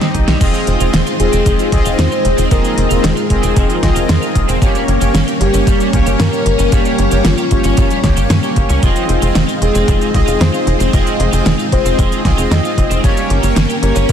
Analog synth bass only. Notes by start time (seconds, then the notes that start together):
0.15 C2
0.28 C2
0.41 F1
0.67 F1
0.80 F1
0.94 F1
1.20 F1
1.33 F1
1.46 F1
1.72 C2
1.86 F1
1.99 F2
2.25 F1
2.38 F1
2.51 F1
2.78 F1
2.91 F1
3.04 F1
3.30 F1
3.43 F1
3.57 F1
3.83 C2
3.96 F1
4.09 F2
4.36 F1
4.49 F1
4.62 G1
4.88 G1
5.01 G1
5.14 G1
5.41 G1
5.54 G1
5.67 G1
5.93 C#2
6.07 G1
6.20 G2
6.46 G1
6.59 G1
6.72 G1
6.99 G1
7.12 G1
7.25 G1
7.51 G1
7.64 G1
7.78 G1
8.04 C#2
8.17 G1
8.30 G2
8.57 G1
8.70 C#2
8.83 F1
9.09 F1
9.22 F1
9.35 F1
9.62 F1
9.75 F1
9.88 F1
10.14 C2
10.27 F1
10.41 F2
10.67 F1
10.80 F1
10.93 F1
11.20 F1
11.33 F1
11.46 F1
11.72 F1
11.85 F1
11.99 F1
12.25 C2
12.38 F1
12.51 F2
12.78 F1
12.91 F1
13.04 G1
13.30 G1
13.43 G1
13.57 G1
13.83 G1
13.96 G1
14.09 G1